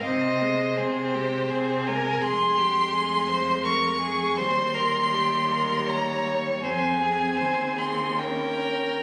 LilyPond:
<<
  \new Staff \with { instrumentName = "Violin" } { \time 3/4 \key aes \major \tempo 4 = 81 ees''4 c''4. aes''8 | c'''2 des'''4 | c'''2 bes''8 r8 | aes''4. c'''8 g''4 | }
  \new Staff \with { instrumentName = "Violin" } { \time 3/4 \key aes \major c''4 aes'8 g'8 aes'8 bes'8 | aes'8 g'8 aes'8 c''8 bes'8 aes'8 | c''8 bes'8 g'8 bes'8 des''4 | c''8 aes'8 c''8 aes'8 bes'4 | }
  \new Staff \with { instrumentName = "Viola" } { \time 3/4 \key aes \major c'8 aes8 c'8 aes8 c'8 aes8 | aes2. | g2. | c'2 des'4 | }
  \new Staff \with { instrumentName = "Cello" } { \clef bass \time 3/4 \key aes \major c4 c4 c4 | f,2. | ees,2. | f,4 ees,2 | }
>>